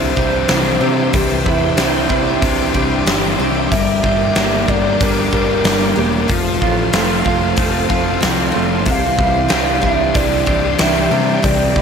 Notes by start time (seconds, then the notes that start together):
Already playing: C2 C3 E3 C4 D4 E4 G4 C5 E5 G5 D6
0.15 C2 G3 D4 G4, kick
0.48 C2 E3 D4, snare, open hi-hat
0.80 C3 C4 G4
1.12 C2 C3 E3 G4, kick, open hi-hat
1.44 E2 C4 E4, kick
1.76 C2 C4 D4 G4, snare, open hi-hat
2.09 C2 C4 D4 E4, kick
2.40 C2 C4 D4 G4, kick, open hi-hat
2.73 C2 G3 D4 G4, kick
3.05 G1 E3 D4, snare, open hi-hat
3.38 C2 C4 G4
3.69 G1 G2 G3 A#3 A#4 D5 E5, kick, open hi-hat
4.03 G1 A#3 G4, kick
4.34 G1 A#3 D4 G4, snare, open hi-hat
4.68 G1 A#3 D4 G4 D5, kick
5.00 G1 A#3 D4 G4 A#4, kick, open hi-hat
5.32 G1 G3 D4 G4, kick
5.64 G1 G3 D4, snare, open hi-hat
5.96 E1 A#3 G4
6.28 F1 F2 F3 A3 F4 A4 C5 F5 C6, kick, open hi-hat
6.60 A1 A3 F4, kick
6.93 F1 A3 C4 F4, snare, open hi-hat
7.24 F1 A3 C4 F4, kick
7.56 F1 A3 C4 F4, kick, open hi-hat
7.88 F1 F3 C4 F4, kick
8.20 C2 F3 C4, snare, open hi-hat
8.52 A3 F4
8.56 F1
8.85 C2 C3 E3 G4 D5 G5, kick, open hi-hat
8.91 F5
9.17 C2 G3 E4, kick
9.49 C2 G3 D4 G4, snare, open hi-hat
9.81 C2 G3 D4 E4 E5, kick
10.14 C2 C4 D4 E4 D5, kick, open hi-hat
10.46 C2 E3 D4 G4, kick
10.79 C2 E3 D4 E5, snare, open hi-hat
11.11 C3 G3 G4
11.42 C2 C3 E3 D5 A#5, kick, open hi-hat
11.74 E2 G3 E4, kick